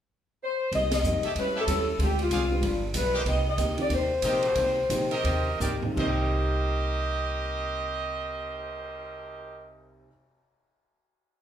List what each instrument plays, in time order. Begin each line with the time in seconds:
0.43 saxophone section C5
0.72 upright bass C2, hollow-body jazz guitar C3 G3 A#3 D#4, saxophone section D#5, kick, ride
0.91 saxophone section D#5, snare, ride
1.03 upright bass F2, hollow-body jazz guitar C3 G3 A#3 D#4, hi-hat pedal
1.23 trumpet section G4 A4 C#5 E5, muted upright bass stroke, ride
1.35 upright bass E2, hollow-body jazz guitar A2 G3 C#4 E4, saxophone section B4, kick, ride
1.55 trumpet section G4 A4 C#5 E5
1.60 saxophone section A4
1.67 upright bass D#2, hollow-body jazz guitar A2 G3 C#4 E4, upright piano G3 C#4 E4 A4, kick, hi-hat pedal, ride
1.99 upright bass D2, hollow-body jazz guitar D3 G#3 C4 F4, saxophone section G4, kick, ride
2.19 saxophone section F4, ride
2.30 upright bass C2, hollow-body jazz guitar D3 G#3 C4 F4, trumpet section G#4 C5 D5 F5, kick, hi-hat pedal, ride
2.50 upright piano F3 B3 D4 G4
2.62 upright bass G1, hollow-body jazz guitar G2 F3 B3 D4, kick, ride
2.94 upright bass B1, hollow-body jazz guitar G2 F3 B3 D4, saxophone section B4, kick, hi-hat pedal, ride
3.14 trumpet section G4 A#4 C5 D#5
3.25 upright bass C2, hollow-body jazz guitar C3 A#3 D#4 G4, saxophone section D#5, kick, ride
3.49 saxophone section D#5
3.57 upright bass D2, hollow-body jazz guitar C3 A#3 D#4 G4, kick, hi-hat pedal, ride
3.78 upright piano D#3 A#3 C4 G4, saxophone section D5, ride
3.90 upright bass D#2, hollow-body jazz guitar C3 A#3 D#4 G4, kick, ride
3.94 saxophone section C5
4.22 upright bass A#1, hollow-body jazz guitar C3 A#3 D#4 G4, trumpet section G4 A#4 C5 D#5, kick, hi-hat pedal, ride
4.43 ride
4.55 upright bass C2, hollow-body jazz guitar C3 A#3 D#4 G4, kick, ride
4.90 upright bass A#1, hollow-body jazz guitar C3 A#3 D#4 G4, upright piano D#3 A#3 C4 G4, kick, hi-hat pedal, ride
5.11 trumpet section G4 A#4 C5 D#5, ride
5.24 upright bass D#2, hollow-body jazz guitar C3 A#3 D#4 G4, kick, ride
5.60 upright bass D2, hollow-body jazz guitar C3 A#3 D#4 G4, trumpet section G4 A#4 C5 D5, floor tom, hi-hat pedal
5.83 upright piano D#3 A#3 C4 D#4, floor tom
5.92 upright bass C2, hollow-body jazz guitar C3, upright piano C3
5.97 hollow-body jazz guitar A#3, upright piano C4 D#4 A#4 D5, trumpet section G4 A#4 C5 D#5, kick, crash
6.09 hollow-body jazz guitar G4
6.20 cymbal swell